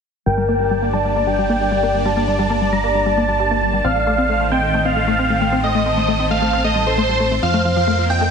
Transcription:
0.26 G1 G3 A#3 D4 A#4 D5 G5 A5
0.37 G3
0.49 A#3 G5
0.60 G3
0.71 G3
0.82 A#3
0.93 G3 D5 A5
1.05 G3
1.16 A#3
1.27 G3 G5
1.38 G3
1.49 A#3 G5
1.61 G3 D5
1.72 G3
1.83 A#3
1.94 G3
2.05 G3 A5
2.17 A#3
2.28 G3 D5 A5
2.39 G3
2.50 A#3
2.62 G3
2.73 G3 A#5
2.84 A#3
2.95 G3
3.06 G3 A5
3.17 A#3
3.28 G3 A5
3.40 G3
3.51 A#3
3.62 G3
3.73 G3
3.84 A1 D#3 A3 C4 C5 D5 F5
3.96 A3
4.07 A3 F5
4.18 C4
4.29 A3
4.41 A3
4.52 C4 D#5 G5
4.63 A3
4.74 A3
4.85 C4 F5
4.96 A3
5.07 A3 F5
5.19 C4 G5
5.30 A3
5.41 A3
5.52 C4
5.63 A3 D#5
5.75 A3
5.86 C4 D#5 A5
5.97 A3
6.08 A3
6.20 C4
6.31 A3 F5
6.42 A3
6.53 C4
6.64 A3 D#5
6.76 G3
6.87 A4 C5
6.98 A3
7.09 G3
7.20 A3
7.31 A3
7.43 F2 F3 A#3 A#4 C5 F5
7.54 A3
7.65 F3 F5
7.76 F3
7.87 A3
7.99 F3
8.10 F3 D#5 G5
8.21 A3

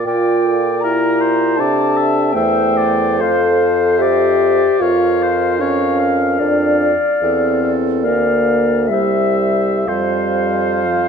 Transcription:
0.05 A#2 F4 A#4 D5 G5
0.45 A4
0.80 E4 G4 A#4 A#5
1.21 C5
1.56 C3 D4 A4 D5 A5
1.97 E5
2.33 E2 A3 C5 E5 G5
2.77 D5
3.19 F2 A4 C5 F5
3.98 G4 C5 D5 E5
4.80 F2 F4 A#4 C#5 F5
5.22 C5
5.60 C#4 C#5 F5
6.00 F5
6.39 F2 D4 D5
7.21 E2 C4 A4
7.63 A4
8.01 D2 A#3 D5 F5
8.05 A#4
8.88 C2 G3 E5
8.92 C5 E5
9.85 F2 G3 C5 F5
10.85 F3 F5

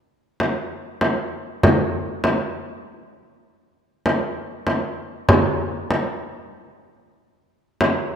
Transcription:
0.40 frame drum
1.01 frame drum
1.63 frame drum
2.24 frame drum
4.06 frame drum
4.67 frame drum
5.29 frame drum
5.91 frame drum
7.81 frame drum

